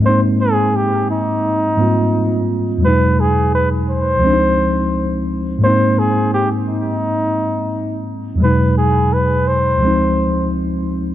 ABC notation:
X:1
M:4/4
L:1/8
Q:"Swing 16ths" 1/4=86
K:Ab
V:1 name="Flugelhorn"
c A G E4 z | =B ^G B c4 z | c A G E4 z | =B ^G B c3 z2 |]
V:2 name="Tine electric piano" clef=bass
[A,,A,B,CE]4- [A,,A,B,CE] [A,,G,B,CF]3 | [=E,,=B,,^F,^G,^D]4 [_D,,=F,A,C=D_E]4 | [A,,A,B,CE]8 | [=E,,=B,,^F,^G,^D]4 [_D,,=F,A,C_E]4 |]